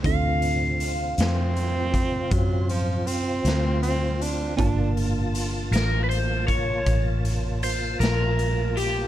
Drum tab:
HH |xxxxxxxxxxxx|xxxxxxxxxxxx|
SD |---o-----o--|---o-----o--|
BD |o----oo-----|o----oo-----|